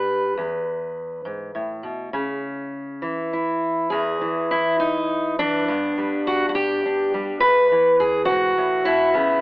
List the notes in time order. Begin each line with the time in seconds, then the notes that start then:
Already playing: G2 G3 B4
0.38 E2
1.25 G#2
1.55 A2
1.83 B2
2.13 C#3
3.02 E3
3.33 E4
3.90 E2 G#4
4.21 E3
4.51 E4
4.80 D#4
5.39 E3 D4
5.68 G2 B3
5.98 G3
6.27 F#4
6.49 F#4
6.55 G4
6.86 D4
7.14 G3
7.40 E2 B4
7.72 E3
8.00 G#4
8.25 G#2 F#4
8.58 A2
8.85 B2 E4
9.14 C#3 B3